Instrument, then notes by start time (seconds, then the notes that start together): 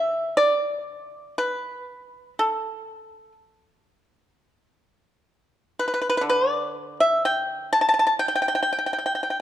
pipa
Already playing: D3 E5
0.37 D5
1.38 B4
2.39 A4
5.79 B4
5.88 B4
5.94 B4
6.01 B4
6.09 B4
6.17 B4
6.21 D3
6.29 B4
6.50 D5
7.00 E5
7.25 G5
7.73 A5
7.81 A5
7.89 A5
7.94 A5
7.99 A5
8.07 A5
8.19 G5
8.28 G5
8.35 G5
8.42 G5
8.48 G5
8.55 G5
8.63 G5
8.73 G5
8.79 G5
8.86 G5
8.93 G5
8.98 G5
9.06 G5
9.15 G5
9.23 G5
9.30 G5